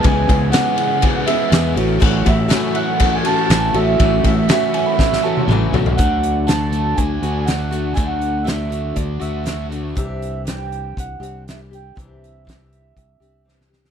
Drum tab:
CC |----------------|x---------------|----------------|----------------|
RD |x-x-x-x-x-x-x-x-|--x-x-x-x-x-x-x-|x-x-x-x---------|----------------|
HH |----------------|----------------|----------------|x-x-x-x-x-x-x-x-|
SD |----o-------o---|----o-------o---|----o---oo------|----o-------o---|
T1 |----------------|----------------|-----------o----|----------------|
T2 |----------------|----------------|------------o---|----------------|
FT |----------------|----------------|--------------oo|----------------|
BD |o-o-----o-------|o-o-----o-------|o-o-----o-------|o-------o-------|

CC |----------------|----------------|----------------|
RD |----------------|----------------|----------------|
HH |x-x-x-x-x-x-x-x-|x-x-x-x-x-x-x-x-|x-x-x-x-x-x-----|
SD |----o-------o---|----o-------o---|----o-------oooo|
T1 |----------------|----------------|----------------|
T2 |----------------|----------------|----------------|
FT |----------------|----------------|----------------|
BD |o-------o-------|o-------o-------|o---o---o-------|